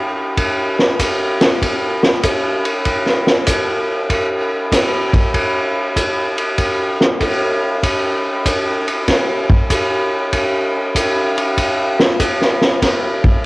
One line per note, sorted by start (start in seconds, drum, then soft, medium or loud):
0.37 kick soft
0.37 ride medium
0.79 snare soft
0.99 kick soft
0.99 hi-hat pedal soft
0.99 ride medium
1.41 snare medium
1.41 ride soft
1.62 kick soft
1.62 ride medium
2.03 snare medium
2.23 kick soft
2.23 hi-hat pedal medium
2.23 ride medium
2.65 ride soft
2.85 kick soft
2.85 ride medium
3.06 snare soft
3.27 snare soft
3.47 kick soft
3.47 hi-hat pedal medium
3.47 ride medium
4.10 kick soft
4.10 ride medium
4.72 kick soft
4.72 snare soft
4.72 hi-hat pedal medium
4.72 ride medium
5.13 kick soft
5.13 ride soft
5.34 kick soft
5.34 ride medium
5.96 kick soft
5.96 hi-hat pedal soft
5.96 ride medium
6.38 ride soft
6.58 kick soft
6.58 ride medium
7.01 snare medium
7.21 kick soft
7.21 hi-hat pedal medium
7.21 ride medium
7.83 kick soft
7.83 ride medium
8.46 kick soft
8.46 hi-hat pedal medium
8.46 ride medium
8.88 ride soft
9.08 kick soft
9.08 snare soft
9.08 ride medium
9.50 kick medium
9.70 kick soft
9.70 hi-hat pedal medium
9.70 ride medium
10.33 kick soft
10.33 ride medium
10.95 kick soft
10.95 hi-hat pedal medium
10.95 ride medium
11.38 ride soft
11.57 kick soft
11.57 ride medium
11.99 snare medium
12.20 kick soft
12.20 hi-hat pedal medium
12.20 ride medium
12.41 snare soft
12.61 snare soft
12.82 kick soft
12.82 snare soft
12.82 ride medium
13.24 kick medium